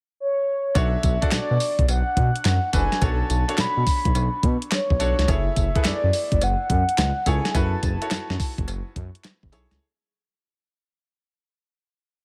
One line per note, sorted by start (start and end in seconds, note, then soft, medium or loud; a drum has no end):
0.20 0.79 C#5 medium
0.75 0.96 B1 loud
0.75 1.14 D4 medium
0.75 1.14 F#4 medium
0.75 1.15 A4 medium
0.75 1.15 C#5 medium
0.75 1.33 E5 loud
0.75 kick loud
0.75 closed hi-hat medium
0.75 tambourine medium
0.75 cowbell medium
1.03 1.17 B1 loud
1.03 kick medium
1.03 closed hi-hat medium
1.03 tambourine medium
1.22 2.15 D4 medium
1.22 2.16 F#4 medium
1.22 2.16 A4 medium
1.22 2.16 D5 medium
1.22 kick medium
1.22 closed hi-hat medium
1.31 1.39 B2 soft
1.31 1.86 D5 medium
1.31 snare loud
1.31 clap medium
1.31 closed hi-hat medium
1.31 tambourine medium
1.31 cowbell medium
1.51 1.58 B2 medium
1.60 open hi-hat medium
1.60 tambourine medium
1.79 1.86 B1 medium
1.79 kick medium
1.79 closed hi-hat medium
1.88 2.02 B1 loud
1.88 2.70 F#5 loud
1.88 closed hi-hat medium
1.88 tambourine medium
1.88 cowbell medium
2.17 2.31 B2 loud
2.17 kick loud
2.17 closed hi-hat medium
2.36 closed hi-hat medium
2.45 2.59 F#2 loud
2.45 snare loud
2.45 clap medium
2.45 closed hi-hat medium
2.45 tambourine medium
2.45 cowbell medium
2.73 2.87 F#1 loud
2.73 2.99 D4 medium
2.73 2.99 F#4 medium
2.73 2.99 A4 medium
2.73 2.99 B4 medium
2.73 3.05 G#5 loud
2.73 kick loud
2.73 closed hi-hat medium
2.73 tambourine medium
2.92 snare medium
2.92 closed hi-hat soft
3.01 3.23 B1 loud
3.01 3.41 D4 medium
3.01 3.41 F#4 medium
3.01 3.41 A4 medium
3.01 3.41 C#5 medium
3.01 3.62 A5 loud
3.01 kick loud
3.01 closed hi-hat medium
3.01 tambourine medium
3.01 cowbell medium
3.30 3.44 B1 loud
3.30 closed hi-hat medium
3.30 tambourine medium
3.48 4.42 D4 medium
3.48 4.42 F#4 medium
3.48 4.42 A4 medium
3.48 4.42 C#5 medium
3.48 closed hi-hat medium
3.58 3.66 B2 soft
3.58 4.44 B5 loud
3.58 snare loud
3.58 clap medium
3.58 closed hi-hat medium
3.58 tambourine medium
3.58 cowbell medium
3.77 3.84 B2 medium
3.87 kick loud
3.87 open hi-hat medium
3.87 tambourine medium
4.05 4.12 B1 medium
4.05 kick medium
4.05 closed hi-hat medium
4.15 4.29 B1 loud
4.15 closed hi-hat medium
4.15 tambourine medium
4.15 cowbell medium
4.43 4.57 B2 loud
4.43 kick loud
4.43 closed hi-hat medium
4.62 closed hi-hat medium
4.71 5.31 C#5 medium
4.71 snare loud
4.71 clap medium
4.71 closed hi-hat medium
4.71 tambourine medium
4.71 cowbell medium
4.90 4.97 B1 medium
4.90 kick medium
5.00 5.14 B1 medium
5.00 5.25 D4 medium
5.00 5.25 F#4 medium
5.00 5.26 A4 medium
5.00 5.26 C#5 medium
5.00 closed hi-hat medium
5.00 tambourine medium
5.19 5.26 C#2 medium
5.19 snare medium
5.19 closed hi-hat medium
5.28 5.49 F#1 loud
5.28 5.67 E4 medium
5.28 5.67 G#4 medium
5.28 5.68 A4 medium
5.28 5.68 C#5 medium
5.28 5.86 E5 loud
5.28 kick loud
5.28 closed hi-hat medium
5.28 tambourine medium
5.28 cowbell medium
5.56 5.70 F#1 loud
5.56 kick medium
5.56 closed hi-hat medium
5.56 tambourine medium
5.75 6.68 E4 medium
5.75 6.69 G#4 medium
5.75 6.69 A4 medium
5.75 5.80 B4 medium
5.75 kick loud
5.75 closed hi-hat medium
5.83 5.92 F#2 soft
5.83 6.45 D5 loud
5.83 6.72 E5 medium
5.83 snare loud
5.83 clap medium
5.83 closed hi-hat medium
5.83 tambourine medium
5.83 cowbell medium
6.03 6.11 F#2 loud
6.13 open hi-hat medium
6.13 tambourine medium
6.32 6.39 F#1 medium
6.32 kick medium
6.32 closed hi-hat medium
6.41 6.55 F#1 loud
6.41 7.30 F#5 loud
6.41 closed hi-hat medium
6.41 tambourine medium
6.41 cowbell medium
6.70 6.84 F#2 loud
6.70 kick loud
6.70 closed hi-hat medium
6.89 closed hi-hat medium
6.98 7.12 C#2 loud
6.98 snare loud
6.98 clap medium
6.98 closed hi-hat medium
6.98 tambourine loud
6.98 cowbell medium
7.26 7.40 C#2 loud
7.26 7.52 E4 medium
7.26 7.52 G#4 medium
7.26 7.52 A4 medium
7.26 7.52 C#5 medium
7.26 7.51 G#5 loud
7.26 kick loud
7.26 closed hi-hat medium
7.26 tambourine medium
7.45 snare medium
7.45 closed hi-hat soft
7.51 7.76 F#1 loud
7.51 7.94 E4 medium
7.51 7.94 F#4 medium
7.51 7.94 A4 medium
7.51 7.58 G#5 medium
7.51 kick loud
7.51 closed hi-hat medium
7.51 tambourine medium
7.51 cowbell medium
7.55 7.94 B4 medium
7.55 8.69 A5 loud
7.83 7.97 F#1 loud
7.83 kick medium
7.83 closed hi-hat medium
7.83 tambourine medium
8.01 8.95 E4 medium
8.01 8.95 F#4 medium
8.01 8.95 A4 medium
8.01 8.95 C#5 medium
8.01 closed hi-hat medium
8.11 8.19 F#2 soft
8.11 snare loud
8.11 clap medium
8.11 closed hi-hat medium
8.11 tambourine medium
8.11 cowbell medium
8.30 8.37 F#2 loud
8.30 snare medium
8.40 kick loud
8.40 open hi-hat medium
8.40 tambourine medium
8.58 8.65 F#1 medium
8.58 kick loud
8.58 closed hi-hat medium
8.68 8.82 F#1 loud
8.68 closed hi-hat medium
8.68 tambourine medium
8.68 cowbell medium
8.96 9.10 F#2 loud
8.96 kick loud
8.96 closed hi-hat medium
9.15 closed hi-hat medium
9.24 snare loud
9.24 clap medium
9.24 closed hi-hat medium
9.24 tambourine medium
9.24 cowbell medium
9.43 9.50 F#1 medium
9.43 kick medium
9.52 9.67 B1 loud
9.52 9.78 E4 medium
9.52 9.78 G#4 medium
9.52 9.78 A4 medium
9.52 9.79 C#5 loud
9.52 closed hi-hat medium
9.52 tambourine medium
9.71 9.79 C#2 loud
9.71 snare medium
9.71 closed hi-hat soft